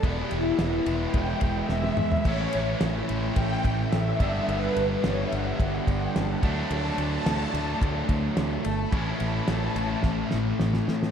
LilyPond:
<<
  \new Staff \with { instrumentName = "String machine" } { \time 4/4 \key a \mixolydian \tempo 4 = 108 d''16 g'16 e'8 r8 c'''16 g''4 e''4~ e''16 | cis''8 r4 c'''16 g''4 e''4~ e''16 | b'8 r8 cis''16 e''16 fis''16 e''16 fis''16 g''16 fis''16 g''16 a''16 fis''16 a''16 b''16 | a''8 a''2 r4 a''16 b''16 |
a''16 b''16 a''16 b''16 a''4 r2 | }
  \new Staff \with { instrumentName = "Distorted electric guitar" } { \time 4/4 \key a \mixolydian <e gis b e'>1 | <a, e a cis' e'>2.~ <a, e a cis' e'>8 <g, d g b d'>8~ | <g, d g b d'>2.~ <g, d g b d'>8 <d fis a d'>8~ | <d fis a d'>2.~ <d fis a d'>8 r8 |
<a, e a cis' e'>1 | }
  \new Staff \with { instrumentName = "Distorted electric guitar" } { \time 4/4 \key a \mixolydian <e gis b e'>4. <e gis b e'>2~ <e gis b e'>8 | <a, e a cis' e'>4. <a, e a cis' e'>2 <g, d g b d'>8~ | <g, d g b d'>4 <g, d g b d'>2~ <g, d g b d'>8 <d fis a d'>8~ | <d fis a d'>4 <d fis a d'>2~ <d fis a d'>8 r8 |
<a, e a cis' e'>4. <a, e a cis' e'>2~ <a, e a cis' e'>8 | }
  \new Staff \with { instrumentName = "Fingered electric bass" } { \clef bass \time 4/4 \key a \mixolydian e,,8 e,,8 e,,8 e,,8 e,,8 e,,8 e,,8 e,8 | a,,8 a,,8 a,,8 a,,8 a,,8 a,,8 a,,8 g,,8 | g,,8 g,,8 g,,8 g,,8 g,,8 g,,8 g,,8 d,8 | d,8 d,8 d,8 d,8 d,8 d,8 d,8 g,,8 |
a,,8 a,,8 a,,8 a,,8 a,,8 a,,8 a,,8 a,8 | }
  \new DrumStaff \with { instrumentName = "Drums" } \drummode { \time 4/4 <bd cymr>8 cymr8 <cymr sn>8 cymr8 <bd cymr>8 <bd cymr>8 sn16 tommh16 toml16 tomfh16 | <cymc bd>8 cymr8 <cymr sn>8 cymr8 <bd cymr>8 <bd cymr>8 <cymr sn>8 <bd cymr>8 | cymr8 cymr8 <cymr sn>8 cymr8 <bd cymr>8 <bd cymr>8 <cymr sn>8 <bd cymr>8 | cymr8 cymr8 <cymr sn>8 cymr8 <bd cymr>8 <bd cymr>8 <cymr sn>8 cymr8 |
<bd cymr>8 cymr8 <cymr sn>8 cymr8 <bd sn>8 sn8 sn16 sn16 sn16 sn16 | }
>>